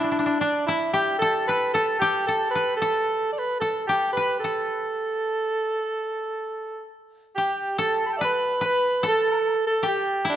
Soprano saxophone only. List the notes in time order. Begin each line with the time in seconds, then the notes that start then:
0.00 E4
0.40 D4
0.66 E4
0.93 G4
1.19 A4
1.47 B4
1.73 A4
1.99 G4
2.27 A4
2.51 B4
2.77 A4
3.33 D5
3.39 B4
3.60 A4
3.87 G4
4.13 B4
4.40 A4
7.35 G4
7.79 A4
8.06 A5 B5
8.12 G5
8.16 D5 E5
8.25 B4
8.66 B4
9.08 A4
9.67 A4
9.88 G4
10.30 E4